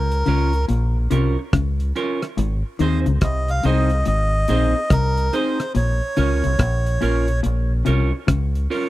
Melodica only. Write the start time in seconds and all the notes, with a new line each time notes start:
Already playing: A#4
2.81 C5
3.23 D#5
3.50 F5
3.66 D#5
4.07 D#5
4.92 A#4
5.34 C5
5.77 C#5